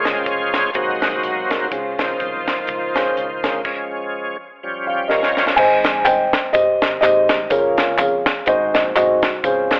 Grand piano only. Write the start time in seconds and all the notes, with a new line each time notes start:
Already playing: A#2 C#4 F4 G#4 A#4
0.75 G#2 D#4 F#4 G#4 C5
1.01 D#4 F#4 G#4 C5
1.49 D#4 F#4 G#4 A#4
1.70 C#3 C#4 F4 G#4 C5
2.96 C#4 F4 G#4 C5
3.44 C#4 F4 G#4 A#4
5.59 G#2 C4 D#4 G#4 C5
7.02 G#3 C4 D#4 G4 D#5
7.51 A#2 A#3 C#4 F4 G#4 A#4
8.46 G#2 C4 D#4 F#4 G#4 C5
8.95 C4 D#4 F#4 G#4 D#5
9.43 C#3 C4 C#4 F4 G#4 C5